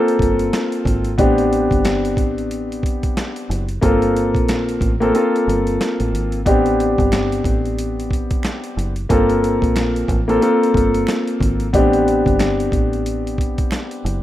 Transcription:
0.00 1.10 A#3 medium
0.00 1.10 C4 medium
0.00 1.11 F4 medium
0.00 1.11 A4 loud
0.08 closed hi-hat medium
0.19 0.49 G1 medium
0.19 kick medium
0.19 closed hi-hat medium
0.39 closed hi-hat medium
0.53 snare loud
0.53 closed hi-hat medium
0.72 closed hi-hat medium
0.85 1.15 G#1 loud
0.85 kick medium
0.85 closed hi-hat medium
1.05 closed hi-hat medium
1.18 1.67 A1 loud
1.18 3.63 B3 medium
1.18 3.64 C4 medium
1.18 3.64 D4 medium
1.18 3.64 G4 loud
1.18 kick loud
1.18 closed hi-hat medium
1.38 closed hi-hat medium
1.53 closed hi-hat medium
1.71 2.17 G1 medium
1.71 kick loud
1.71 closed hi-hat soft
1.85 snare loud
1.85 closed hi-hat medium
2.05 closed hi-hat medium
2.17 2.99 A1 medium
2.17 kick medium
2.17 closed hi-hat medium
2.38 closed hi-hat soft
2.51 closed hi-hat medium
2.72 closed hi-hat medium
2.83 kick medium
2.83 closed hi-hat medium
3.03 kick medium
3.03 closed hi-hat medium
3.17 snare loud
3.17 closed hi-hat medium
3.36 closed hi-hat medium
3.50 3.79 F#1 medium
3.50 closed hi-hat medium
3.69 closed hi-hat medium
3.81 4.35 G1 loud
3.81 4.90 A#3 loud
3.81 4.90 C4 medium
3.81 4.90 F4 medium
3.81 4.91 A4 loud
3.81 kick loud
3.81 closed hi-hat medium
4.02 closed hi-hat medium
4.16 closed hi-hat medium
4.35 4.77 A#1 medium
4.35 kick loud
4.35 closed hi-hat soft
4.48 snare loud
4.48 closed hi-hat medium
4.69 closed hi-hat medium
4.81 5.11 A1 medium
4.81 kick medium
4.81 closed hi-hat medium
5.00 5.12 A#3 loud
5.00 5.13 C4 medium
5.00 5.14 F4 medium
5.00 5.14 A4 loud
5.00 closed hi-hat soft
5.14 6.37 A#3 medium
5.14 6.38 C4 medium
5.14 6.38 F4 medium
5.14 6.39 A4 loud
5.14 closed hi-hat medium
5.36 closed hi-hat medium
5.47 5.77 G1 loud
5.47 closed hi-hat medium
5.67 closed hi-hat medium
5.81 snare loud
5.81 closed hi-hat medium
6.00 6.12 A1 medium
6.00 closed hi-hat medium
6.13 6.43 G#1 medium
6.13 closed hi-hat medium
6.32 closed hi-hat medium
6.45 6.95 A1 loud
6.45 8.91 B3 medium
6.45 8.91 C4 medium
6.45 8.92 D4 medium
6.45 8.92 G4 loud
6.45 kick loud
6.45 closed hi-hat medium
6.66 closed hi-hat medium
6.80 closed hi-hat medium
6.98 7.41 G1 medium
6.98 kick loud
6.98 closed hi-hat soft
7.12 finger snap medium
7.12 snare loud
7.12 closed hi-hat medium
7.32 closed hi-hat medium
7.44 8.27 A1 medium
7.44 kick medium
7.44 closed hi-hat medium
7.65 closed hi-hat soft
7.79 closed hi-hat medium
8.00 closed hi-hat medium
8.11 kick medium
8.11 closed hi-hat medium
8.31 kick loud
8.31 closed hi-hat medium
8.43 finger snap medium
8.43 snare loud
8.43 closed hi-hat medium
8.64 closed hi-hat medium
8.77 9.07 F#1 loud
8.77 closed hi-hat medium
8.96 closed hi-hat medium
9.09 9.59 G1 loud
9.09 10.17 A#3 loud
9.09 10.18 C4 medium
9.09 10.18 F4 medium
9.09 10.18 A4 loud
9.09 kick loud
9.09 closed hi-hat medium
9.30 closed hi-hat medium
9.44 closed hi-hat medium
9.62 10.04 A#1 medium
9.62 kick medium
9.62 closed hi-hat soft
9.76 finger snap medium
9.76 snare loud
9.76 closed hi-hat medium
9.96 closed hi-hat medium
10.08 10.38 A1 medium
10.08 kick medium
10.08 closed hi-hat medium
10.28 10.40 A#3 medium
10.28 10.40 C4 medium
10.28 10.41 F4 medium
10.28 10.42 A4 loud
10.28 closed hi-hat soft
10.41 11.65 A#3 loud
10.41 11.65 C4 medium
10.41 11.66 F4 medium
10.41 11.66 A4 loud
10.41 closed hi-hat medium
10.63 closed hi-hat medium
10.74 11.04 G1 medium
10.74 kick medium
10.74 closed hi-hat medium
10.94 closed hi-hat medium
11.07 finger snap medium
11.07 snare loud
11.07 closed hi-hat medium
11.27 closed hi-hat medium
11.40 11.70 G#1 loud
11.40 kick medium
11.40 closed hi-hat medium
11.60 closed hi-hat medium
11.73 12.23 A1 loud
11.73 14.18 B3 medium
11.73 14.19 C4 medium
11.73 14.19 D4 medium
11.73 14.19 G4 loud
11.73 kick loud
11.73 closed hi-hat medium
11.93 closed hi-hat medium
12.08 closed hi-hat medium
12.26 12.68 G1 medium
12.26 kick loud
12.26 closed hi-hat soft
12.39 finger snap medium
12.39 snare loud
12.39 closed hi-hat medium
12.60 closed hi-hat medium
12.72 13.54 A1 medium
12.72 kick medium
12.72 closed hi-hat medium
12.93 closed hi-hat soft
13.06 closed hi-hat medium
13.27 closed hi-hat medium
13.38 kick medium
13.38 closed hi-hat medium
13.58 kick medium
13.58 closed hi-hat medium
13.71 finger snap medium
13.71 snare loud
13.71 closed hi-hat medium
13.91 closed hi-hat medium
14.05 14.23 F#1 loud
14.05 closed hi-hat medium

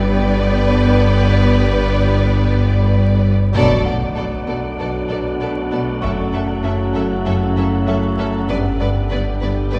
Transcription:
0.00 3.30 G1 medium
0.00 3.54 G1 medium
0.00 0.76 G2 medium
0.00 3.30 G2 medium
0.00 3.19 D3 medium
0.00 0.14 G3 medium
0.00 3.19 G3 loud
0.00 3.20 B3 medium
0.00 3.31 B3 loud
0.00 3.20 D4 medium
0.00 3.30 B4 loud
0.00 3.54 B4 medium
0.00 3.30 D5 loud
0.00 3.53 D5 medium
0.00 1.34 G5 medium
0.00 3.54 G5 medium
0.15 0.44 G3 medium
0.46 1.67 G3 soft
0.77 1.06 G2 soft
1.07 1.37 G2 soft
1.38 1.99 G2 soft
1.69 2.60 G3 soft
2.00 2.30 G2 soft
2.31 3.22 G2 medium
2.62 2.91 G3 soft
2.92 3.57 G3 soft
3.23 3.57 G2 soft
3.53 3.83 B1 medium
3.53 6.04 B1 medium
3.53 5.97 B2 medium
3.53 3.85 B2 medium
3.53 3.84 B2 medium
3.53 8.44 F#3 medium
3.53 8.46 A3 medium
3.53 3.84 B3 medium
3.53 5.98 D4 medium
3.53 8.45 A4 medium
3.53 3.83 A4 medium
3.53 5.98 D5 medium
3.53 3.84 D5 medium
3.53 8.45 F#5 medium
3.53 impact medium
3.85 3.94 B1 medium
3.85 4.47 B2 soft
3.85 3.94 B2 medium
3.85 3.94 B3 soft
3.85 3.94 A4 soft
3.85 3.94 D5 soft
3.85 5.67 F#5 medium
4.17 4.25 B1 medium
4.17 4.25 B2 medium
4.17 4.25 B3 soft
4.17 5.08 B3 soft
4.17 4.25 A4 medium
4.17 4.26 D5 soft
4.46 4.56 B1 soft
4.46 4.78 B2 soft
4.46 4.56 B2 medium
4.46 4.54 B3 soft
4.46 4.56 A4 soft
4.46 4.57 D5 soft
4.78 4.86 B1 medium
4.78 5.70 B2 medium
4.78 4.87 B2 medium
4.78 4.86 B3 soft
4.78 4.87 A4 soft
4.78 4.88 D5 soft
5.09 5.17 B1 medium
5.09 5.18 B2 soft
5.09 5.17 B3 soft
5.09 5.39 B3 soft
5.09 5.17 A4 soft
5.09 5.18 D5 soft
5.40 5.49 B1 medium
5.40 5.48 B2 medium
5.40 5.48 B3 soft
5.40 6.05 B3 soft
5.40 5.49 A4 soft
5.40 5.49 D5 soft
5.71 5.79 B1 medium
5.71 6.05 B2 soft
5.71 5.79 B2 medium
5.71 5.79 B3 soft
5.71 5.80 A4 soft
5.71 5.80 D5 soft
6.01 6.10 F#1 medium
6.01 8.50 F#1 medium
6.01 6.32 F#2 medium
6.01 6.11 F#2 medium
6.01 8.46 C#3 medium
6.01 6.10 C#4 medium
6.01 8.46 E4 medium
6.01 6.10 A4 medium
6.01 8.49 E5 medium
6.01 6.11 E5 medium
6.01 7.83 C#6 soft
6.33 6.42 F#1 medium
6.33 6.93 F#2 soft
6.33 6.41 F#2 medium
6.33 6.41 C#4 soft
6.33 6.41 A4 soft
6.33 6.42 E5 soft
6.63 6.71 F#1 medium
6.63 6.72 F#2 medium
6.63 7.56 F#3 soft
6.63 6.71 C#4 soft
6.63 6.71 A4 medium
6.63 6.72 E5 soft
6.94 7.04 F#1 medium
6.94 7.24 F#2 soft
6.94 7.03 F#2 medium
6.94 7.03 C#4 soft
6.94 7.02 A4 soft
6.94 7.03 E5 medium
7.25 7.34 F#1 medium
7.25 7.33 F#2 medium
7.25 8.17 F#2 medium
7.25 7.35 C#4 medium
7.25 7.34 A4 medium
7.25 7.34 E5 medium
7.56 7.65 F#1 medium
7.56 7.64 F#2 medium
7.56 7.86 F#3 soft
7.56 7.65 C#4 medium
7.56 7.65 A4 medium
7.56 7.65 E5 medium
7.87 7.96 F#1 medium
7.87 7.95 F#2 medium
7.87 8.51 F#3 medium
7.87 7.96 C#4 medium
7.87 7.96 A4 medium
7.87 7.95 E5 medium
8.18 8.26 F#1 medium
8.18 8.52 F#2 medium
8.18 8.26 F#2 medium
8.18 8.27 C#4 medium
8.18 8.27 A4 medium
8.18 8.26 E5 medium
8.48 8.57 G1 medium
8.48 9.79 G1 medium
8.48 8.78 G2 medium
8.48 8.57 G2 medium
8.48 9.79 D3 medium
8.48 9.79 G3 medium
8.48 8.58 B3 medium
8.48 9.79 B3 medium
8.48 9.79 D4 medium
8.48 9.79 B4 medium
8.48 8.57 B4 medium
8.48 9.79 D5 medium
8.48 8.57 D5 medium
8.48 9.79 G5 medium
8.80 8.88 G1 medium
8.80 9.41 G2 medium
8.80 8.88 G2 medium
8.80 8.88 B3 medium
8.80 8.88 B4 medium
8.80 8.88 D5 medium
9.10 9.18 G1 medium
9.10 9.19 G2 medium
9.10 9.79 G3 medium
9.10 9.20 B3 medium
9.10 9.18 B4 medium
9.10 9.19 D5 medium
9.41 9.50 G1 medium
9.41 9.72 G2 medium
9.41 9.50 G2 medium
9.41 9.50 B3 medium
9.41 9.49 B4 medium
9.41 9.51 D5 medium
9.72 9.79 G1 medium
9.72 9.79 G2 medium
9.72 9.79 B3 medium
9.72 9.79 B4 medium
9.72 9.79 D5 medium

